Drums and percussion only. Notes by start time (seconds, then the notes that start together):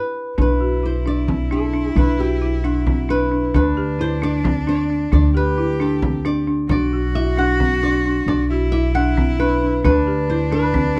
0.38 frame drum
0.61 frame drum
1.28 frame drum
1.96 frame drum
2.19 frame drum
2.86 frame drum
3.54 frame drum
3.78 frame drum
4.45 frame drum
5.12 frame drum
6.02 frame drum
6.47 frame drum
6.69 frame drum
6.93 frame drum
7.60 frame drum
8.28 frame drum
9.17 frame drum
9.85 frame drum
10.07 frame drum
10.74 frame drum